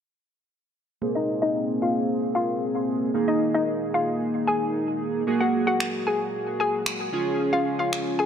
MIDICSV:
0, 0, Header, 1, 4, 480
1, 0, Start_track
1, 0, Key_signature, -4, "major"
1, 0, Tempo, 530973
1, 925, Time_signature, 4, 2, 24, 8
1, 7464, End_track
2, 0, Start_track
2, 0, Title_t, "Synth pluck"
2, 0, Program_c, 0, 84
2, 1043, Note_on_c, 0, 75, 76
2, 1052, Note_on_c, 0, 63, 57
2, 1123, Note_off_c, 0, 75, 0
2, 1129, Note_off_c, 0, 63, 0
2, 1284, Note_on_c, 0, 75, 82
2, 1292, Note_on_c, 0, 63, 62
2, 1443, Note_off_c, 0, 75, 0
2, 1449, Note_off_c, 0, 63, 0
2, 1646, Note_on_c, 0, 77, 75
2, 1652, Note_on_c, 0, 65, 56
2, 1725, Note_off_c, 0, 77, 0
2, 1729, Note_off_c, 0, 65, 0
2, 2125, Note_on_c, 0, 77, 79
2, 2133, Note_on_c, 0, 65, 62
2, 2284, Note_off_c, 0, 77, 0
2, 2289, Note_off_c, 0, 65, 0
2, 2964, Note_on_c, 0, 75, 80
2, 2972, Note_on_c, 0, 63, 61
2, 3044, Note_off_c, 0, 75, 0
2, 3049, Note_off_c, 0, 63, 0
2, 3205, Note_on_c, 0, 75, 71
2, 3211, Note_on_c, 0, 63, 59
2, 3364, Note_off_c, 0, 75, 0
2, 3368, Note_off_c, 0, 63, 0
2, 3564, Note_on_c, 0, 77, 80
2, 3570, Note_on_c, 0, 65, 63
2, 3644, Note_off_c, 0, 77, 0
2, 3648, Note_off_c, 0, 65, 0
2, 4045, Note_on_c, 0, 80, 84
2, 4052, Note_on_c, 0, 68, 65
2, 4204, Note_off_c, 0, 80, 0
2, 4209, Note_off_c, 0, 68, 0
2, 4886, Note_on_c, 0, 78, 75
2, 4893, Note_on_c, 0, 66, 58
2, 4965, Note_off_c, 0, 78, 0
2, 4970, Note_off_c, 0, 66, 0
2, 5126, Note_on_c, 0, 78, 82
2, 5132, Note_on_c, 0, 66, 59
2, 5285, Note_off_c, 0, 78, 0
2, 5289, Note_off_c, 0, 66, 0
2, 5485, Note_on_c, 0, 80, 71
2, 5493, Note_on_c, 0, 68, 57
2, 5565, Note_off_c, 0, 80, 0
2, 5569, Note_off_c, 0, 68, 0
2, 5966, Note_on_c, 0, 80, 77
2, 5973, Note_on_c, 0, 68, 64
2, 6125, Note_off_c, 0, 80, 0
2, 6129, Note_off_c, 0, 68, 0
2, 6805, Note_on_c, 0, 77, 79
2, 6813, Note_on_c, 0, 65, 66
2, 6885, Note_off_c, 0, 77, 0
2, 6889, Note_off_c, 0, 65, 0
2, 7044, Note_on_c, 0, 77, 73
2, 7052, Note_on_c, 0, 65, 56
2, 7203, Note_off_c, 0, 77, 0
2, 7208, Note_off_c, 0, 65, 0
2, 7403, Note_on_c, 0, 80, 77
2, 7411, Note_on_c, 0, 68, 61
2, 7464, Note_off_c, 0, 68, 0
2, 7464, Note_off_c, 0, 80, 0
2, 7464, End_track
3, 0, Start_track
3, 0, Title_t, "Analog polysynth"
3, 0, Program_c, 1, 90
3, 919, Note_on_c, 1, 58, 68
3, 924, Note_on_c, 1, 60, 64
3, 928, Note_on_c, 1, 68, 76
3, 2805, Note_off_c, 1, 58, 0
3, 2808, Note_off_c, 1, 60, 0
3, 2810, Note_off_c, 1, 68, 0
3, 2840, Note_on_c, 1, 58, 65
3, 2844, Note_on_c, 1, 63, 61
3, 2847, Note_on_c, 1, 68, 72
3, 4726, Note_off_c, 1, 58, 0
3, 4728, Note_off_c, 1, 63, 0
3, 4730, Note_off_c, 1, 68, 0
3, 4761, Note_on_c, 1, 58, 65
3, 4765, Note_on_c, 1, 66, 64
3, 4770, Note_on_c, 1, 68, 75
3, 6409, Note_off_c, 1, 58, 0
3, 6411, Note_off_c, 1, 66, 0
3, 6414, Note_off_c, 1, 68, 0
3, 6440, Note_on_c, 1, 61, 83
3, 6445, Note_on_c, 1, 65, 70
3, 6449, Note_on_c, 1, 68, 84
3, 7464, Note_off_c, 1, 61, 0
3, 7464, Note_off_c, 1, 65, 0
3, 7464, Note_off_c, 1, 68, 0
3, 7464, End_track
4, 0, Start_track
4, 0, Title_t, "Drums"
4, 5247, Note_on_c, 9, 26, 105
4, 5337, Note_off_c, 9, 26, 0
4, 6204, Note_on_c, 9, 26, 113
4, 6294, Note_off_c, 9, 26, 0
4, 7167, Note_on_c, 9, 26, 99
4, 7257, Note_off_c, 9, 26, 0
4, 7464, End_track
0, 0, End_of_file